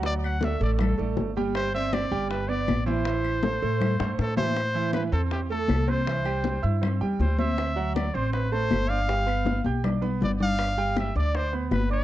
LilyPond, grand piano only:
\new Staff \with { instrumentName = "Grand piano" } { \time 4/4 \key a \minor \tempo 4 = 159 <fis fis' fis''>4 <a a' d''>8 <a a' d''>4 <a a' d''>4 <g g' g''>8~ | <g g' g''>8 <c' c'' d''>8 <c' c'' d''>8 <g g' g''>4 <b b' d''>4 <e e' e''>8 | <e e' e''>4 <a a' c''>8 <a a' c''>4 <a a' c''>4 <e e' e''>8 | r8 <e e' e''>4 <c' c'' c'''>4 <a a' a''>4 <c' c'' c'''>8 |
<e e' e''>8 <g g' g''>4 <e' e'' e'''>8 <c' c'' c'''>8 <g g' g''>4 <c' c'' c'''>8~ | <c' c'' c'''>8 <fis fis' fis''>4 <c' c'' c'''>4 <a a' a''>4 <d' d'' d'''>8 | <g g' g''>8 <b b' b''>4 <g' g'' g'''>8 <d' d'' d'''>8 <b b' b''>4 <d' d'' d'''>8~ | <d' d'' d'''>8 <g g' g''>4 <d' d'' d'''>4 <b b' b''>4 <d' d'' d'''>8 | }